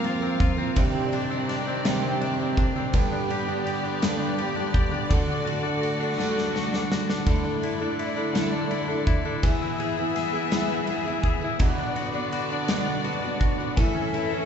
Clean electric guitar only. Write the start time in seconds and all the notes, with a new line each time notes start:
Already playing: A#3 C4
0.05 F4
0.23 C4
0.41 F4
0.58 C4
0.77 C3
0.95 C4
1.13 D4
1.31 C4
1.49 D4
1.68 C4
1.85 C3
2.03 C4
2.21 D4
2.40 C4
2.59 D4
2.76 C4
2.95 G2
3.12 D4
3.31 G4
3.49 D4
3.66 G4
3.84 D4
4.02 G2
4.20 D4
4.38 G4
4.56 D4
4.74 G4
4.91 D4
5.09 D3
5.27 D4
5.45 F#4
5.63 D4
5.81 F#4
6.00 D4
6.18 D3
6.36 D4
6.55 F#4
6.73 D4
6.92 F#4
7.10 D4
7.27 D3
7.45 D4
7.64 E4
7.82 D4
7.99 E4
8.17 D4
8.33 D3
8.52 D4
8.71 E4
8.88 D4
9.07 E4
9.25 D4
9.43 E3
9.62 E4
9.80 G#4
9.97 E4
10.16 G#4
10.35 E4
10.53 E3
10.72 E4
10.90 G#4
11.08 E4
11.25 G#4
11.44 E4
11.61 B2
11.79 D4
11.96 F#4
12.15 D4
12.33 F#4
12.53 D4
12.69 B2
12.87 D4
13.04 F#4
13.22 D4
13.40 F#4
13.58 D4
13.77 E3
13.95 C#4
14.15 E4
14.33 C#4